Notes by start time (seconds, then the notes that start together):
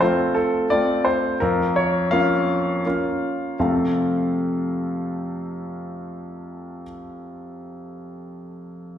0.01 A3 C4 F4 C5
0.34 A4
0.70 A3 C4 F4 D5
1.05 C5
1.40 F2 A#4
1.76 C#5
2.11 A#3 C#4 F4 F5
2.86 A#3 C#4 F4
3.60 F2 C3 A3 C4 F4 A4 F5